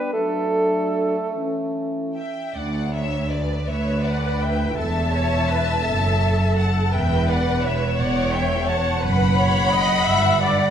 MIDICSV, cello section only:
0, 0, Header, 1, 2, 480
1, 0, Start_track
1, 0, Key_signature, 2, "major"
1, 0, Tempo, 806452
1, 83, Time_signature, 6, 3, 24, 8
1, 1522, Tempo, 757576
1, 2002, Tempo, 724638
1, 4402, Tempo, 698487
1, 6989, End_track
2, 0, Start_track
2, 0, Title_t, "Cello section"
2, 0, Program_c, 0, 48
2, 1528, Note_on_c, 0, 38, 56
2, 2163, Note_off_c, 0, 38, 0
2, 2251, Note_on_c, 0, 38, 55
2, 2887, Note_off_c, 0, 38, 0
2, 2974, Note_on_c, 0, 40, 60
2, 3608, Note_off_c, 0, 40, 0
2, 3690, Note_on_c, 0, 42, 66
2, 4318, Note_off_c, 0, 42, 0
2, 4404, Note_on_c, 0, 40, 68
2, 5042, Note_off_c, 0, 40, 0
2, 5132, Note_on_c, 0, 40, 72
2, 5753, Note_off_c, 0, 40, 0
2, 5836, Note_on_c, 0, 42, 67
2, 6473, Note_off_c, 0, 42, 0
2, 6565, Note_on_c, 0, 43, 75
2, 6989, Note_off_c, 0, 43, 0
2, 6989, End_track
0, 0, End_of_file